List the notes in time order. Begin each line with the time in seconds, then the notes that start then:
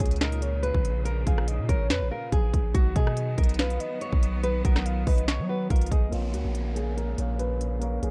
Already playing: A#2 C#3 C#5
0.00 C#2 G#4, kick
0.06 closed hi-hat
0.11 closed hi-hat
0.16 closed hi-hat
0.21 A#4 D#5, snare, closed hi-hat
0.32 closed hi-hat
0.42 C#5, closed hi-hat
0.63 B4, closed hi-hat
0.74 A#1, kick
0.85 closed hi-hat
1.05 A#4, closed hi-hat
1.26 A#1 G#4 F5, kick, closed hi-hat
1.38 cross-stick
1.48 D#5, closed hi-hat
1.59 A#2
1.69 A#1 A#4 C#5, kick, closed hi-hat
1.90 F2 B4, snare, closed hi-hat
2.01 A#1
2.11 A#4 F5
2.32 A#1 G#4, kick, closed hi-hat
2.54 A#1, kick, closed hi-hat
2.74 B1 D#3 F#3 B3 F#4, kick, closed hi-hat
2.96 B2 G#4 D#5, kick, closed hi-hat
3.07 cross-stick
3.17 closed hi-hat
3.37 B1 A#4, kick, closed hi-hat
3.44 closed hi-hat
3.49 closed hi-hat
3.54 closed hi-hat
3.59 B4 F5, snare, closed hi-hat
3.70 closed hi-hat
3.80 D#5, closed hi-hat
4.01 C#5, closed hi-hat
4.13 B1, kick
4.23 closed hi-hat
4.43 B4, closed hi-hat
4.65 B1 A#4 F#5, kick, closed hi-hat
4.76 cross-stick, snare
4.86 F5, closed hi-hat
5.07 B1 B4 D#5, kick, closed hi-hat, open hi-hat
5.18 closed hi-hat
5.28 C#5, snare, closed hi-hat
5.39 F#3
5.49 B4 F#5
5.70 B1 A#4 F5, kick, closed hi-hat
5.76 closed hi-hat
5.81 closed hi-hat
5.86 closed hi-hat
5.91 B1 G#4 D#5, kick, closed hi-hat
6.09 A#1 A#2 C#3 A#3 F4 A#4 C#5, closed hi-hat, downlifter
6.15 F5
6.34 C#2 F#4, closed hi-hat
6.45 A#1
6.55 closed hi-hat
6.73 A#3 G#4 A#4 C#5, closed hi-hat
6.78 G#5
6.97 A#4, closed hi-hat
7.16 A#1 A#3 A#4 C#5, closed hi-hat
7.22 F5
7.39 B4, closed hi-hat
7.61 closed hi-hat
7.79 A#3 A#4 C#5, closed hi-hat
7.85 F5
8.03 A#1 G#4, closed hi-hat